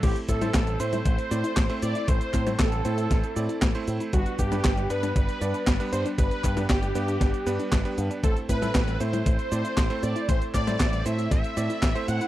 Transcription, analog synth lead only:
\new Staff \with { instrumentName = "Analog synth lead" } { \time 4/4 \key a \minor \tempo 4 = 117 g'8 a'4 c''8 c''4. d''8 | c''4 a'2~ a'8 r8 | fis'8 g'4 b'8 b'4. c''8 | b'4 g'2~ g'8 r8 |
a'8 b'4 c''8 c''4. d''8 | c''8 d''4 e''8 e''4. fis''8 | }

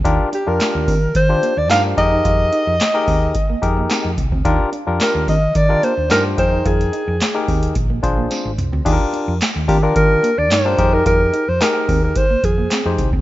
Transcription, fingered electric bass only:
\new Staff \with { instrumentName = "Fingered electric bass" } { \clef bass \time 4/4 \key ees \major \tempo 4 = 109 ees,16 r8 f,16 r16 ees,16 ees8 ees8 r16 ees,16 g,8 f,8 | f,8 r16 f,16 r8 ees,8 r8 f,8 r16 f,16 c,16 d,16 | ees,16 r8 f,16 r16 ees,16 ees8 ees8 r16 ees,16 g,8 f,8 | f,8 r16 f,16 r8 ees,8 bes,,8 bes,,8 r16 aes,,16 c,16 d,16 |
ees,16 r8 f,16 r16 ees,16 ees8 ees8 r16 ees,16 g,8 f,8 | f,8 r16 f,16 r8 ees,8 r8 f,8 r16 f,16 c,16 d,16 | }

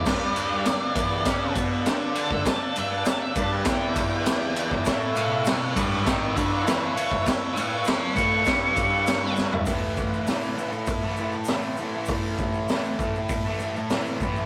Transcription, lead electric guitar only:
\new Staff \with { instrumentName = "Lead electric guitar" } { \time 4/4 \key a \mixolydian \tempo 4 = 100 d''2~ d''8 r4 a''16 e''16 | a''16 a''16 e''16 a''16 a''16 e''16 a''8 g''2 | r8 <e'' g''>8 <e'' g''>8 <cis'' e''>8 <cis'' e''>8 <a' c''>8 <a' c''>8 cis''8 | r8 <cis'' a''>8 <a'' c'''>8 cis'''2 r8 |
r1 | r1 | }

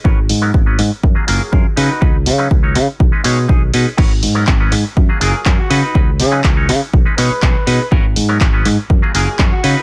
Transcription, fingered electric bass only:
\new Staff \with { instrumentName = "Fingered electric bass" } { \clef bass \time 4/4 \key gis \dorian \tempo 4 = 122 gis,,8 gis,8 gis,,8 gis,8 fis,8 fis,,8 fis,8 cis8 | cis,8 cis8 cis,8 cis8 b,,8 b,8 b,,8 b,8 | gis,,8 gis,8 gis,,8 gis,8 fis,8 fis,,8 fis,8 cis8 | cis,8 cis8 cis,8 cis8 b,,8 b,8 b,,8 b,8 |
gis,,8 gis,8 gis,,8 gis,8 fis,8 fis,,8 fis,8 cis8 | }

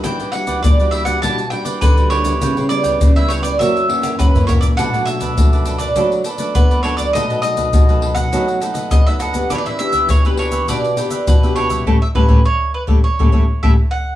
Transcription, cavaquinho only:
\new Staff \with { instrumentName = "Cavaquinho" } { \time 4/4 \key b \minor \tempo 4 = 102 <e' g' b' d''>16 <g' b' d''>16 r16 <g' b' d''>8 <g' b' d''>16 <e' g' b' d''>16 <g' b' d''>16 <e' g' b' d''>16 r16 <e' g' b' d''>16 <g' b' d''>8 <g' b' d''>16 <e' g' b' d''>16 <g' b' d''>16 | <e' b' cis'' g''>16 <b' cis'' g''>16 r16 <b' cis'' g''>8 <b' cis'' g''>16 <e' b' cis'' g''>16 <b' cis'' g''>16 <fis' ais' cis'' e''>16 r16 <fis' ais' cis'' e''>16 <ais' cis'' e''>8 <ais' cis'' e''>16 <fis' ais' cis'' e''>16 <ais' cis'' e''>16 | <d' a' b' d''>16 <a' b' d''>16 r16 <a' b' d''>8 <a' b' d''>16 <d' a' b' d''>16 <a' b' d''>16 <d' a' b' d''>16 r16 <d' a' b' d''>16 <a' b' d''>8 <a' b' d''>16 <d' a' b' d''>16 <a' b' d''>16 | <dis' a' b' dis''>16 <a' b' dis''>16 r16 <a' b' dis''>8 <a' b' dis''>16 <dis' a' b' dis''>16 <a' b' dis''>16 <dis' a' b' dis''>16 r16 <dis' a' b' dis''>16 <a' b' dis''>8 <a' b' dis''>16 <dis' a' b' dis''>16 <a' b' dis''>16 |
<d' g' b' e''>16 <g' b' e''>16 r16 <g' b' e''>8 <g' b' e''>16 <d' g' b' e''>16 <g' b' e''>16 <d' g' b' e''>16 r16 <d' g' b' e''>16 <g' b' e''>8 <g' b' e''>16 <d' g' b' e''>16 <g' b' e''>16 | <g' a' cis''>16 r16 <g' a' cis''>16 <g' a' cis''>16 r8. <g' a' cis''>16 r16 <g' a' cis''>16 <g' a' cis''>16 r16 <g' a' cis''>16 r8. | }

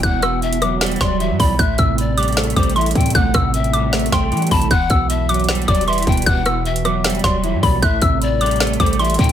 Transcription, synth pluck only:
\new Staff \with { instrumentName = "Synth pluck" } { \time 4/4 \key e \minor \tempo 4 = 154 fis'''8 e'''4 d'''8 r8 c'''4 b''8 | fis'''8 e'''4 d'''8 r8 d'''8 c'''8 r8 | fis'''8 e'''4 d'''8 r8 c'''4 b''8 | fis'''8 e'''4 d'''8 r8 d'''8 c'''8 r8 |
fis'''8 e'''4 d'''8 r8 c'''4 b''8 | fis'''8 e'''4 d'''8 r8 d'''8 c'''8 r8 | }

